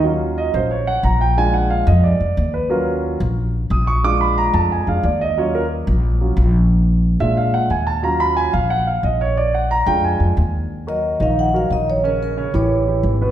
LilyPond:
<<
  \new Staff \with { instrumentName = "Vibraphone" } { \time 4/4 \key ees \minor \tempo 4 = 180 r1 | r1 | r1 | r1 |
r1 | r1 | r1 | r1 |
r8 ees''4 f''8 ges''8 f''8 ees''8 des''8 | bes'8 bes'4 des''4. r4 | }
  \new Staff \with { instrumentName = "Grand piano" } { \time 4/4 \key ees \minor << { r4 ees''8 c''8 des''8 ges''8 bes''8 g''8 | aes''8 ges''8 f''8 ees''8 d''4. ces''8 | bes'4 r2 ees'''8 des'''8 | d'''8 ces'''8 bes''8 a''8 aes''8 f''8 d''8 ees''8 |
des''8 bes'8 r2. | r4. fes''8 f''8 ges''8 aes''8 a''8 | bes''8 ces'''8 aes''8 f''8 ges''8 f''8 ees''8 des''8 | d''8 ges''8 bes''8 g''8 aes''4. r8 |
r8 <ges ges' bes'>4 <ees ees' ees''>4 <ges ges' bes'>8 <ees ees' ees''>4 | <des des' des''>4 <des des' des''>8 <fes fes' g'>4 <e e' g'>4 <b, b b'>8 | } \\ { <ges des' f'>4. <ges des' f'>8 r2 | <aes d' f'>4. r2 r8 | <ges des' f'>4. r2 r8 | <aes d' f'>2~ <aes d' f'>8 <aes d' f'>8 r4 |
<ges des' f'>8 r2 <ges des' f'>8 r4 | r4. <aes d' f'>4. r4 | <ges des' f'>4. r2 r8 | r4. <aes d' f'>4. r4 |
r1 | r1 | } >> }
  \new Staff \with { instrumentName = "Upright bass" } { \clef bass \time 4/4 \key ees \minor dis,4. bes,,4. bes,,4~ | bes,,4. f,4 f,8 ees,4~ | ees,4. bes,,4. bes,,4~ | bes,,4. f,4 f,8 ees,4~ |
ees,4. bes,,4. bes,,4~ | bes,,4. bes,4. ees,4~ | ees,4. bes,,4. bes,,4~ | bes,,4. f,4 f,8 ees,4~ |
ees,4. bes,,4. bes,,4~ | bes,,4. a,,4. aes,,4 | }
>>